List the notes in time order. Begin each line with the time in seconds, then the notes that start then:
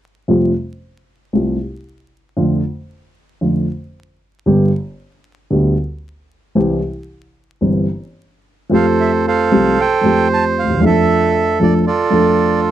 0.28 F2 C3 F3 G3 A3 F4
1.33 C2 C3 G3 A3 F4
2.37 F2 D3 F3 A3 F4
3.41 F2 D3 F3 A3 F4
4.46 G1 G2 D3 G3 B3 G4
5.50 D2 D3 G3 B3 G4
6.55 C2 C3 E3 G3 C4 G4
7.61 G1 G2 E3 G3 C4 G4
8.69 F2 F3 A3 C4 G4
8.74 A4 C5 F5
9.00 E5
9.27 A4 C5 F5
9.51 C2 C3 F3 A3 C4 G4
9.80 C5 G5
10.01 F2 F3 A3 C4
10.06 G4
10.33 A5
10.59 F5
10.63 D2
10.70 D#2
10.75 E2
10.80 F2 F3 A3 D4
10.84 A4 E5
11.60 F2 F3 A3 D4 A4 D5
11.87 F4 A4 D5
12.10 F2 F3 A3 D4 A4